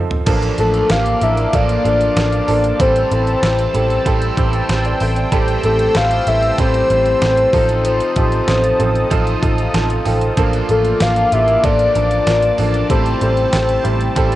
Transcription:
Already playing: F3 C4 D#4 A4
0.11 floor tom
0.26 A1 F3 A#3 D4 A4 F5 A5 D6, kick, closed hi-hat, crash
0.43 closed hi-hat
0.58 A1 F3 A#3 D4 A4, closed hi-hat
0.74 closed hi-hat
0.90 A1 F3 A#3 D4 G4 F5, snare, closed hi-hat
1.06 closed hi-hat
1.21 A1 F3 A#3 D4 A#4 E5, closed hi-hat
1.37 closed hi-hat
1.47 E5
1.52 A1 F3 A#3 D4 A4 D5, kick, closed hi-hat
1.57 A#3
1.69 closed hi-hat
1.84 A1 F3 A#3 D4 A4, closed hi-hat
2.01 closed hi-hat
2.16 A1 F3 A#3 D4 A4, snare, closed hi-hat
2.32 closed hi-hat
2.47 A1 F3 A#3 D4 A4, open hi-hat
2.64 closed hi-hat
2.79 A1 C3 E3 G3 C4 E4 A4 C5 G5 E6, kick, closed hi-hat
2.96 closed hi-hat
3.11 A1 G3 C4 E4 A4, closed hi-hat
3.27 closed hi-hat
3.42 A1 C3 G3 C4 E4 C5, snare, closed hi-hat
3.59 closed hi-hat
3.74 A1 G3 C4 E4 A4, closed hi-hat
3.90 closed hi-hat
4.04 A1 C3 G3 C4 E4 A4, kick, closed hi-hat
4.09 C4
4.22 closed hi-hat
4.37 A1 G3 C4 E4 C5, kick, closed hi-hat
4.53 closed hi-hat
4.69 A1 G4 C5, snare, closed hi-hat
4.85 A4 D5, closed hi-hat
5.00 A1 A4 E5, open hi-hat
5.16 D5 G5, closed hi-hat
5.32 A1 A2 E3 G3 A3 C4 E4 G4 A4 E6, kick, closed hi-hat
5.48 closed hi-hat
5.64 A1 G3 C4 E4 G4 A4, closed hi-hat
5.79 closed hi-hat
5.94 A1 A2 E3 G3 A3 C4 E4 A4 F5, snare, closed hi-hat
6.11 closed hi-hat
6.27 A1 G3 C4 E4 A4 E5, closed hi-hat
6.43 closed hi-hat
6.58 A1 A2 E3 G3 A3 C4 E4 A4 C5, kick, closed hi-hat
6.74 closed hi-hat
6.90 A1 G3 C4 E4 C5, closed hi-hat
7.06 closed hi-hat
7.22 A1 G3 C4 E4 A4, snare, closed hi-hat
7.37 closed hi-hat
7.53 A1 C3 F3 C4 D#4 F4 A4 A5 D#6, kick, open hi-hat
7.69 closed hi-hat
7.84 F2 C3 C5, closed hi-hat
7.88 F3
8.00 closed hi-hat
8.16 A1 F3 C4 D#4 G4, kick, closed hi-hat
8.32 closed hi-hat
8.48 A1 F3 C4 D#4 A4, snare, closed hi-hat
8.64 closed hi-hat
8.79 A1 F3 C4 D#4 A4, closed hi-hat
8.95 closed hi-hat
9.10 A1 F2 C3 F3 C4 D#4 A4, kick, closed hi-hat
9.27 closed hi-hat
9.42 A1 F3 C4 D#4 A4, kick, closed hi-hat
9.58 closed hi-hat
9.74 A1 F3 C4 D#4 A4 A5, snare, closed hi-hat
9.90 closed hi-hat
10.05 A1 F3 C4 D#4 A4 G5, open hi-hat
10.21 closed hi-hat
10.37 A1 F3 A#3 D4 A4 A5 D6, kick, closed hi-hat
10.53 closed hi-hat
10.69 A1 F3 A#3 D4 A4, closed hi-hat
10.85 closed hi-hat
11.00 A1 F3 A#3 D4 A4 F5, snare, closed hi-hat, tambourine
11.16 closed hi-hat
11.32 A1 F3 A#3 D4 G4 E5, closed hi-hat
11.48 closed hi-hat
11.63 A1 F3 A#3 D4 A4 D5, kick, closed hi-hat
11.79 closed hi-hat
11.95 A1 F3 A#3 D4 A4, closed hi-hat
12.11 closed hi-hat
12.26 A1 F3 A#3 D4 A#4, snare, closed hi-hat, tambourine
12.43 closed hi-hat
12.58 A1 F3 A#3 D4 A4, open hi-hat
12.74 closed hi-hat
12.89 A1 C3 G3 A3 C4 E4 G4 A4 C5 G5 E6, kick, closed hi-hat
12.93 C4
13.06 closed hi-hat
13.21 A1 G3 C4 E4 A4, closed hi-hat
13.37 closed hi-hat
13.52 A1 G3 C4 E4 A4, snare, closed hi-hat, tambourine
13.69 closed hi-hat
13.83 A1 G3 C4 E4 C5 E5, closed hi-hat
14.01 closed hi-hat
14.16 A1 C3 G3 C4 E4 A4 G5, kick, closed hi-hat
14.32 closed hi-hat

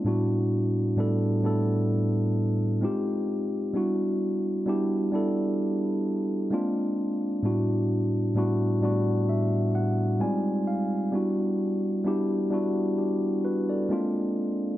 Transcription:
0.04 A2 G3 B3 D4 E4 F#4
0.97 A2 G3 B3 D4 E4 A4
1.43 A2 G3 B3 D4 E4 A4
2.81 G#3 C4 D#4 F4 G4
3.74 G3 B3 D4 E4 F#4
4.66 G3 B3 D4 E4 G4
5.12 G3 B3 D4 E4 A4
6.51 G#3 A#3 C4 D4 F4
7.43 A2 G3 B3 D4 E4 F#4
8.35 A2 G3 B3 D4 E4 F#4
8.81 A2 G3 B3 D4 E4 F#4 D5
9.29 E5
9.75 F#5
10.20 G3 G#3 C4 D#4 F4 G#5
10.67 F5
11.12 G3 B3 D4 E4 F#4
12.04 G3 B3 D4 E4 G4
12.51 G3 B3 D4 E4 F#4
12.98 D4 G4
13.45 F#4 B4
13.69 A4 D5
13.89 G#3 A#3 C4 D4 F4

